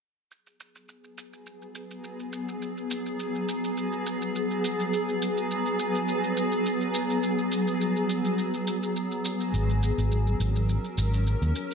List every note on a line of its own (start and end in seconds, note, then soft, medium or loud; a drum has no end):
0.31 11.74 F#3 medium
0.31 9.50 B3 medium
0.31 9.50 G#4 medium
0.31 shaker soft
0.47 shaker soft
0.60 shaker medium
0.75 shaker soft
0.89 shaker soft
1.04 shaker soft
1.18 shaker medium
1.33 shaker soft
1.46 shaker soft
1.62 shaker soft
1.75 shaker medium
1.91 shaker soft
2.04 shaker soft
2.20 shaker soft
2.33 shaker medium
2.49 shaker soft
2.62 shaker soft
2.77 shaker soft
2.91 shaker medium
3.06 shaker soft
3.20 shaker soft
3.35 shaker soft
3.49 shaker medium
3.64 shaker soft
3.77 shaker soft
3.93 shaker soft
4.06 shaker medium
4.22 shaker soft
4.36 shaker soft
4.51 shaker soft
4.64 shaker medium
4.80 shaker soft
4.93 shaker soft
5.09 shaker soft
5.22 shaker medium
5.37 shaker soft
5.51 shaker soft
5.66 shaker soft
5.79 shaker medium
5.95 shaker soft
6.08 shaker soft
6.24 shaker soft
6.37 shaker medium
6.52 shaker soft
6.66 shaker soft
6.81 shaker soft
6.94 shaker medium
7.10 shaker soft
7.23 shaker soft
7.39 shaker soft
7.52 shaker medium
7.68 shaker soft
7.81 shaker soft
7.96 shaker soft
8.10 shaker medium
8.25 shaker soft
8.38 shaker soft
8.54 shaker soft
8.67 shaker medium
8.83 shaker soft
8.96 shaker soft
9.12 shaker soft
9.25 shaker medium
9.41 shaker soft
9.53 9.90 G#1 medium
9.53 11.74 C#4 medium
9.53 11.74 A#4 medium
9.53 shaker soft
9.70 shaker soft
9.83 shaker medium
9.98 10.33 G#1 medium
9.98 shaker soft
10.12 shaker soft
10.27 shaker soft
10.40 10.76 G#1 medium
10.40 shaker medium
10.56 shaker soft
10.69 shaker soft
10.84 shaker soft
10.98 11.34 G#1 medium
10.98 shaker medium
11.14 shaker soft
11.27 shaker soft
11.42 11.51 D#2 medium
11.42 shaker soft
11.56 shaker medium